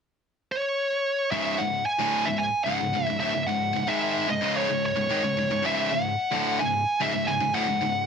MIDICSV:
0, 0, Header, 1, 3, 480
1, 0, Start_track
1, 0, Key_signature, 4, "minor"
1, 0, Tempo, 541516
1, 1174, Time_signature, 4, 2, 24, 8
1, 7148, End_track
2, 0, Start_track
2, 0, Title_t, "Lead electric guitar"
2, 0, Program_c, 0, 29
2, 460, Note_on_c, 0, 73, 91
2, 1161, Note_off_c, 0, 73, 0
2, 1164, Note_on_c, 0, 76, 99
2, 1402, Note_on_c, 0, 78, 100
2, 1416, Note_off_c, 0, 76, 0
2, 1644, Note_off_c, 0, 78, 0
2, 1647, Note_on_c, 0, 80, 101
2, 1998, Note_on_c, 0, 76, 84
2, 2022, Note_off_c, 0, 80, 0
2, 2111, Note_on_c, 0, 80, 101
2, 2117, Note_off_c, 0, 76, 0
2, 2339, Note_off_c, 0, 80, 0
2, 2343, Note_on_c, 0, 78, 105
2, 2706, Note_off_c, 0, 78, 0
2, 2706, Note_on_c, 0, 76, 105
2, 2804, Note_off_c, 0, 76, 0
2, 2835, Note_on_c, 0, 76, 90
2, 3067, Note_off_c, 0, 76, 0
2, 3072, Note_on_c, 0, 78, 99
2, 3441, Note_on_c, 0, 76, 98
2, 3455, Note_off_c, 0, 78, 0
2, 3782, Note_off_c, 0, 76, 0
2, 3809, Note_on_c, 0, 75, 95
2, 4035, Note_off_c, 0, 75, 0
2, 4051, Note_on_c, 0, 73, 81
2, 4295, Note_off_c, 0, 73, 0
2, 4306, Note_on_c, 0, 73, 93
2, 5015, Note_off_c, 0, 73, 0
2, 5018, Note_on_c, 0, 76, 93
2, 5261, Note_on_c, 0, 78, 102
2, 5263, Note_off_c, 0, 76, 0
2, 5849, Note_off_c, 0, 78, 0
2, 5853, Note_on_c, 0, 80, 97
2, 6220, Note_on_c, 0, 76, 96
2, 6224, Note_off_c, 0, 80, 0
2, 6443, Note_on_c, 0, 80, 94
2, 6464, Note_off_c, 0, 76, 0
2, 6688, Note_off_c, 0, 80, 0
2, 6692, Note_on_c, 0, 78, 102
2, 7148, Note_off_c, 0, 78, 0
2, 7148, End_track
3, 0, Start_track
3, 0, Title_t, "Distorted electric guitar"
3, 0, Program_c, 1, 30
3, 1169, Note_on_c, 1, 37, 81
3, 1173, Note_on_c, 1, 44, 100
3, 1178, Note_on_c, 1, 49, 90
3, 1394, Note_off_c, 1, 37, 0
3, 1396, Note_off_c, 1, 44, 0
3, 1404, Note_on_c, 1, 37, 61
3, 1407, Note_on_c, 1, 44, 70
3, 1409, Note_off_c, 1, 49, 0
3, 1601, Note_off_c, 1, 37, 0
3, 1602, Note_off_c, 1, 44, 0
3, 1762, Note_on_c, 1, 38, 72
3, 1764, Note_on_c, 1, 45, 81
3, 1774, Note_on_c, 1, 50, 84
3, 2001, Note_off_c, 1, 38, 0
3, 2002, Note_off_c, 1, 45, 0
3, 2007, Note_off_c, 1, 50, 0
3, 2009, Note_on_c, 1, 37, 53
3, 2011, Note_on_c, 1, 44, 58
3, 2204, Note_off_c, 1, 37, 0
3, 2205, Note_off_c, 1, 44, 0
3, 2358, Note_on_c, 1, 37, 81
3, 2367, Note_on_c, 1, 44, 86
3, 2471, Note_off_c, 1, 37, 0
3, 2473, Note_off_c, 1, 44, 0
3, 2482, Note_on_c, 1, 37, 55
3, 2483, Note_on_c, 1, 44, 67
3, 2588, Note_off_c, 1, 37, 0
3, 2593, Note_off_c, 1, 44, 0
3, 2599, Note_on_c, 1, 37, 59
3, 2604, Note_on_c, 1, 44, 65
3, 2704, Note_off_c, 1, 37, 0
3, 2714, Note_off_c, 1, 44, 0
3, 2715, Note_on_c, 1, 37, 62
3, 2725, Note_on_c, 1, 44, 60
3, 2836, Note_off_c, 1, 37, 0
3, 2839, Note_on_c, 1, 38, 92
3, 2847, Note_off_c, 1, 44, 0
3, 2851, Note_on_c, 1, 45, 88
3, 2960, Note_off_c, 1, 38, 0
3, 2963, Note_off_c, 1, 45, 0
3, 2966, Note_on_c, 1, 44, 71
3, 2968, Note_on_c, 1, 37, 65
3, 3068, Note_off_c, 1, 37, 0
3, 3072, Note_off_c, 1, 44, 0
3, 3079, Note_on_c, 1, 37, 54
3, 3083, Note_on_c, 1, 44, 61
3, 3279, Note_off_c, 1, 37, 0
3, 3281, Note_off_c, 1, 44, 0
3, 3305, Note_on_c, 1, 37, 62
3, 3313, Note_on_c, 1, 44, 67
3, 3419, Note_off_c, 1, 44, 0
3, 3426, Note_off_c, 1, 37, 0
3, 3430, Note_on_c, 1, 44, 89
3, 3436, Note_on_c, 1, 51, 88
3, 3444, Note_on_c, 1, 56, 87
3, 3783, Note_off_c, 1, 44, 0
3, 3788, Note_on_c, 1, 37, 55
3, 3790, Note_off_c, 1, 51, 0
3, 3794, Note_on_c, 1, 44, 63
3, 3802, Note_off_c, 1, 56, 0
3, 3895, Note_off_c, 1, 37, 0
3, 3904, Note_off_c, 1, 44, 0
3, 3906, Note_on_c, 1, 37, 92
3, 3914, Note_on_c, 1, 44, 88
3, 3917, Note_on_c, 1, 49, 90
3, 4146, Note_off_c, 1, 37, 0
3, 4148, Note_off_c, 1, 44, 0
3, 4156, Note_on_c, 1, 37, 63
3, 4158, Note_on_c, 1, 44, 61
3, 4159, Note_off_c, 1, 49, 0
3, 4357, Note_off_c, 1, 37, 0
3, 4358, Note_off_c, 1, 44, 0
3, 4402, Note_on_c, 1, 44, 64
3, 4403, Note_on_c, 1, 37, 62
3, 4501, Note_off_c, 1, 44, 0
3, 4508, Note_off_c, 1, 37, 0
3, 4512, Note_on_c, 1, 44, 82
3, 4523, Note_on_c, 1, 51, 99
3, 4636, Note_off_c, 1, 44, 0
3, 4642, Note_off_c, 1, 51, 0
3, 4643, Note_on_c, 1, 37, 63
3, 4648, Note_on_c, 1, 44, 56
3, 4748, Note_off_c, 1, 37, 0
3, 4748, Note_off_c, 1, 44, 0
3, 4758, Note_on_c, 1, 37, 70
3, 4758, Note_on_c, 1, 44, 72
3, 4869, Note_off_c, 1, 37, 0
3, 4872, Note_off_c, 1, 44, 0
3, 4879, Note_on_c, 1, 37, 64
3, 4882, Note_on_c, 1, 44, 70
3, 4976, Note_off_c, 1, 37, 0
3, 4986, Note_on_c, 1, 37, 81
3, 4987, Note_off_c, 1, 44, 0
3, 4998, Note_on_c, 1, 44, 96
3, 5004, Note_on_c, 1, 49, 100
3, 5225, Note_off_c, 1, 37, 0
3, 5232, Note_off_c, 1, 44, 0
3, 5236, Note_on_c, 1, 37, 63
3, 5242, Note_off_c, 1, 49, 0
3, 5243, Note_on_c, 1, 44, 78
3, 5437, Note_off_c, 1, 37, 0
3, 5440, Note_off_c, 1, 44, 0
3, 5600, Note_on_c, 1, 38, 78
3, 5606, Note_on_c, 1, 45, 75
3, 5616, Note_on_c, 1, 50, 89
3, 5840, Note_off_c, 1, 38, 0
3, 5843, Note_off_c, 1, 45, 0
3, 5848, Note_off_c, 1, 50, 0
3, 5858, Note_on_c, 1, 37, 65
3, 5865, Note_on_c, 1, 44, 75
3, 6048, Note_off_c, 1, 37, 0
3, 6052, Note_off_c, 1, 44, 0
3, 6208, Note_on_c, 1, 37, 70
3, 6218, Note_on_c, 1, 44, 91
3, 6317, Note_off_c, 1, 37, 0
3, 6321, Note_off_c, 1, 44, 0
3, 6327, Note_on_c, 1, 37, 63
3, 6332, Note_on_c, 1, 44, 82
3, 6437, Note_off_c, 1, 37, 0
3, 6440, Note_off_c, 1, 44, 0
3, 6448, Note_on_c, 1, 37, 57
3, 6450, Note_on_c, 1, 44, 61
3, 6549, Note_off_c, 1, 37, 0
3, 6550, Note_off_c, 1, 44, 0
3, 6560, Note_on_c, 1, 37, 56
3, 6561, Note_on_c, 1, 44, 63
3, 6679, Note_off_c, 1, 37, 0
3, 6682, Note_on_c, 1, 38, 86
3, 6687, Note_off_c, 1, 44, 0
3, 6696, Note_on_c, 1, 45, 90
3, 6801, Note_off_c, 1, 38, 0
3, 6805, Note_off_c, 1, 45, 0
3, 6808, Note_on_c, 1, 44, 66
3, 6810, Note_on_c, 1, 37, 66
3, 6910, Note_off_c, 1, 37, 0
3, 6915, Note_off_c, 1, 44, 0
3, 6920, Note_on_c, 1, 37, 66
3, 6926, Note_on_c, 1, 44, 70
3, 7119, Note_off_c, 1, 37, 0
3, 7122, Note_off_c, 1, 44, 0
3, 7148, End_track
0, 0, End_of_file